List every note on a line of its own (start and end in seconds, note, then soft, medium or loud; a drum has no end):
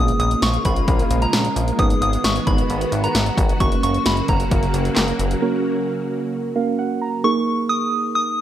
0.00 0.13 A#1 loud
0.00 1.77 C#3 medium
0.00 3.57 G#3 medium
0.00 1.75 A#3 medium
0.00 1.77 A#3 medium
0.00 1.75 C#4 medium
0.00 1.75 F4 medium
0.00 1.77 F4 medium
0.00 1.75 G#4 medium
0.00 0.18 D#6 loud
0.08 closed hi-hat medium
0.20 0.35 A#1 loud
0.20 0.30 D#6 loud
0.20 closed hi-hat medium
0.31 closed hi-hat soft
0.42 0.58 A#1 loud
0.42 0.66 C#6 loud
0.42 snare loud
0.42 closed hi-hat medium
0.54 closed hi-hat soft
0.65 0.81 A#1 loud
0.65 1.24 B5 medium
0.65 kick medium
0.65 closed hi-hat medium
0.76 closed hi-hat soft
0.88 1.04 A#1 loud
0.88 kick medium
0.88 closed hi-hat medium
0.99 closed hi-hat medium
1.10 1.26 A#1 medium
1.10 closed hi-hat medium
1.22 1.81 A#5 medium
1.22 closed hi-hat soft
1.33 1.49 A#1 loud
1.33 snare loud
1.33 closed hi-hat medium
1.45 closed hi-hat soft
1.56 1.72 A#1 medium
1.56 closed hi-hat medium
1.68 closed hi-hat soft
1.78 1.95 G#1 loud
1.78 3.59 D#3 medium
1.78 3.59 B3 medium
1.78 3.57 B3 medium
1.78 3.57 D#4 medium
1.78 7.20 F#4 medium
1.78 3.57 G#4 medium
1.78 3.57 B4 medium
1.78 2.01 D#6 loud
1.78 kick loud
1.78 closed hi-hat medium
1.90 closed hi-hat medium
2.01 2.17 G#1 loud
2.01 2.25 D#6 loud
2.01 closed hi-hat medium
2.13 closed hi-hat medium
2.24 2.40 G#1 medium
2.24 2.35 C#6 loud
2.24 snare loud
2.24 closed hi-hat medium
2.36 closed hi-hat soft
2.47 2.63 G#1 loud
2.47 3.05 B5 medium
2.47 kick medium
2.47 closed hi-hat medium
2.58 closed hi-hat soft
2.69 2.85 G#1 loud
2.69 closed hi-hat medium
2.81 closed hi-hat medium
2.92 3.08 G#1 loud
2.92 closed hi-hat medium
3.04 3.57 A#5 medium
3.04 closed hi-hat soft
3.15 3.31 G#1 loud
3.15 snare loud
3.15 closed hi-hat medium
3.26 closed hi-hat soft
3.37 3.53 G#1 loud
3.37 kick medium
3.37 closed hi-hat medium
3.49 closed hi-hat medium
3.60 3.76 F#1 loud
3.60 7.21 C#3 medium
3.60 7.21 F#3 medium
3.60 5.39 A#3 medium
3.60 7.21 A#3 medium
3.60 5.39 C#4 medium
3.60 5.39 F#4 medium
3.60 5.39 A#4 medium
3.60 3.71 C#6 medium
3.60 kick loud
3.60 closed hi-hat medium
3.72 closed hi-hat medium
3.83 3.99 F#1 medium
3.83 4.07 C#6 medium
3.83 closed hi-hat medium
3.94 closed hi-hat soft
4.06 4.22 F#1 loud
4.06 4.16 B5 medium
4.06 snare loud
4.06 closed hi-hat medium
4.17 closed hi-hat soft
4.28 4.45 F#1 loud
4.28 6.75 A#5 medium
4.28 kick medium
4.28 closed hi-hat medium
4.40 closed hi-hat medium
4.51 4.67 F#1 loud
4.51 kick loud
4.51 closed hi-hat medium
4.63 closed hi-hat medium
4.74 4.90 F#1 loud
4.74 closed hi-hat medium
4.85 closed hi-hat soft
4.96 5.13 F#1 loud
4.96 snare loud
4.96 clap loud
4.96 closed hi-hat medium
5.08 closed hi-hat soft
5.19 5.35 F#1 loud
5.19 closed hi-hat medium
5.31 closed hi-hat medium
5.42 6.53 A#3 medium
5.42 6.53 C#4 medium
5.42 6.54 F#4 medium
5.42 6.54 A#4 medium
6.56 7.23 A#3 medium
6.56 7.24 C#4 medium
6.56 7.24 F#4 medium
6.56 7.23 A#4 medium
6.56 6.77 F5 medium
6.79 7.00 F#5 medium
7.02 7.23 A#5 medium
7.24 8.41 A#3 medium
7.24 8.41 D#4 medium
7.24 8.41 G#4 medium
7.24 8.41 A#4 medium
7.24 7.71 C#6 loud
7.69 8.14 D#6 loud
8.15 8.41 D#6 loud